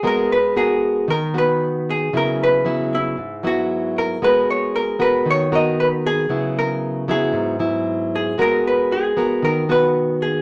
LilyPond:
<<
  \new Staff \with { instrumentName = "Hollow-body jazz guitar" } { \time 4/4 \key gis \minor \tempo 4 = 115 ais'8 b'8 gis'4 ais'8 b'4 gis'8 | ais'8 b'4 e'4 fis'4 ais'8 | b'8 cis''8 ais'8 b'8 cis''8 dis''8 b'8 gis'8~ | gis'8 ais'4 gis'2 gis'8 |
ais'8 b'8 gis'4 ais'8 b'4 gis'8 | }
  \new Staff \with { instrumentName = "Nylon-string guitar" } { \time 4/4 \key gis \minor << { <b fis' ais'>8 r8 <b fis' ais'>4 r8 <b fis'>4. | <fis b e'>4 <fis b e'>4 r8 <fis b e'>4. | <b fis' ais'>4. <b fis' ais'>4 <b fis' ais'>4. | <fis b e'>4. <fis b e'>4 <fis b e'>4. |
<b fis' ais'>4. <b fis' ais'>4 <b fis'>4. | } \\ { gis2 dis2 | cis2 gis,2 | gis2 dis2 | cis2 gis,2 |
gis2 dis2 | } >> }
>>